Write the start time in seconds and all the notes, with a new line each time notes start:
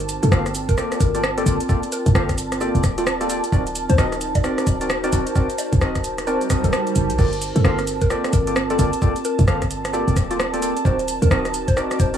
Already playing: G1 C4 A#4 C5 A5
0.00 closed hi-hat, shaker
0.07 F4, closed hi-hat, shaker
0.14 D5
0.23 G2 A4, closed hi-hat, shaker
0.32 G1 A#3 F4 G4 A4 F5, cross-stick, shaker
0.46 cross-stick, closed hi-hat, shaker
0.55 closed hi-hat, shaker
0.69 A#4, kick, closed hi-hat, shaker
0.78 A#3 F4 G4 A4 D5, cross-stick, shaker
0.92 cross-stick, closed hi-hat, shaker
1.00 G1 A#4, kick, closed hi-hat, shaker
1.15 A#3 F4 G4 A4 D5, closed hi-hat, shaker
1.24 cross-stick, shaker
1.38 A#3 F4 G4 A4 D5, closed hi-hat, shaker
1.46 G1 A#3 F4 G4 A4 D5, closed hi-hat, shaker
1.60 closed hi-hat, shaker
1.69 A#3 F4 G4 A4 D5, kick, shaker
1.83 closed hi-hat, shaker
1.92 A#4, closed hi-hat, shaker
2.06 G2, kick, closed hi-hat, shaker
2.15 G1 A#3 F4 G4 A4 F5, cross-stick, shaker
2.29 kick, cross-stick, closed hi-hat, shaker
2.38 closed hi-hat, shaker
2.52 cross-stick, closed hi-hat, shaker
2.61 A#3 F4 G4 A4 D5, shaker
2.75 F1, closed hi-hat, shaker
2.84 D1, kick, cross-stick, closed hi-hat, shaker
2.98 A#3 F4 G4 A4 D5, closed hi-hat, shaker
3.07 cross-stick, shaker
3.21 A#3 F4 G4 A4 D5, closed hi-hat, shaker
3.29 A#3 F4 G4 A4 D5, closed hi-hat, shaker
3.44 closed hi-hat, shaker
3.52 D1 C4 D#4 F#4 A#4 D5, kick, shaker
3.67 closed hi-hat, shaker
3.75 closed hi-hat, shaker
3.90 D2 F#4 C5, closed hi-hat, shaker
3.98 D1 C4 D#4 F#4 A#4 D#5, cross-stick, shaker
4.12 cross-stick, closed hi-hat, shaker
4.21 closed hi-hat, shaker
4.35 D5, kick, closed hi-hat, shaker
4.44 C4 D#4 F#4 A#4 D5, cross-stick, shaker
4.58 cross-stick, closed hi-hat, shaker
4.63 C5
4.67 D1 D5, kick, closed hi-hat, shaker
4.81 C4 D#4 F#4 A#4 D5, closed hi-hat, shaker
4.90 cross-stick, shaker
5.04 C4 D#4 F#4 A#4 C5 D5, closed hi-hat, shaker
5.13 D1 C4 D#4 F#4 A#4 D5, closed hi-hat, shaker
5.27 closed hi-hat, shaker
5.35 C4 D#4 F#4 A#4 D5, kick, shaker
5.50 closed hi-hat, shaker
5.58 D5, closed hi-hat, shaker
5.73 D2, kick, closed hi-hat, shaker
5.81 D1 C4 D#4 F#4 A#4 D#5, cross-stick, shaker
5.95 kick, cross-stick, closed hi-hat, shaker
6.04 closed hi-hat, shaker
6.18 cross-stick, closed hi-hat, shaker
6.27 C4 D#4 F#4 A#4 D5, swell, shaker
6.41 closed hi-hat, shaker
6.50 C4 D#4 F#4 A#4 D#5, kick, cross-stick, closed hi-hat, shaker
6.64 D1 A4, closed hi-hat, shaker
6.73 cross-stick, shaker
6.87 closed hi-hat, shaker
6.96 F#1, closed hi-hat, shaker
7.10 C2, closed hi-hat, shaker
7.18 G1 A#3 C4 F4 G4 A4 A#4 D5 A5, kick, crash, shaker
7.33 closed hi-hat, shaker
7.42 F4, closed hi-hat, shaker
7.56 G2 A4, closed hi-hat, shaker
7.64 G1 A#3 F4 G4 A4 F5, cross-stick, shaker
7.79 cross-stick, closed hi-hat, shaker
7.87 closed hi-hat, shaker
8.01 A#4, kick, closed hi-hat, shaker
8.10 A#3 F4 G4 A4 D5, cross-stick, shaker
8.24 D5, cross-stick, closed hi-hat, shaker
8.33 G1 A#4, kick, closed hi-hat, shaker
8.47 A#3 F4 G4 A4 D5, closed hi-hat, shaker
8.56 cross-stick, shaker
8.70 A#3 F4 G4 A4 D5, closed hi-hat, shaker
8.79 G1 A#3 F4 G4 A4 D5, closed hi-hat, shaker
8.93 closed hi-hat, shaker
9.02 A#3 F4 G4 A4 D5, kick, shaker
9.16 closed hi-hat, shaker
9.25 A#4, closed hi-hat, shaker
9.39 G2, kick, closed hi-hat, shaker
9.48 G1 A#3 F4 G4 A4 F5, cross-stick, shaker
9.62 kick, cross-stick, closed hi-hat, shaker
9.71 closed hi-hat, shaker
9.85 cross-stick, closed hi-hat, shaker
9.93 A#3 F4 G4 A4 D5, shaker
10.08 F1, closed hi-hat, shaker
10.16 D1, kick, cross-stick, closed hi-hat, shaker
10.31 A#3 F4 G4 A4 D5, closed hi-hat, shaker
10.40 cross-stick, shaker
10.54 A#3 F4 G4 A4 D5, closed hi-hat, shaker
10.62 A#3 F4 G4 A4 D5, closed hi-hat, shaker
10.77 closed hi-hat, shaker
10.85 D1 C4 D#4 F#4 A#4 C5 D5, kick, shaker
10.99 closed hi-hat, shaker
11.04 F#4
11.08 closed hi-hat, shaker
11.16 C5
11.22 D2 A#4, closed hi-hat, shaker
11.31 D1 C4 D#4 F#4 A#4 D#5, cross-stick, shaker
11.45 cross-stick, closed hi-hat, shaker
11.54 closed hi-hat, shaker
11.68 C5, kick, closed hi-hat, shaker
11.77 C4 D#4 F#4 A#4 D5, cross-stick, shaker
11.91 cross-stick, closed hi-hat, shaker
12.00 D1 C5, kick, closed hi-hat, shaker
12.14 C4 D#4 F#4 A#4 D5, closed hi-hat, shaker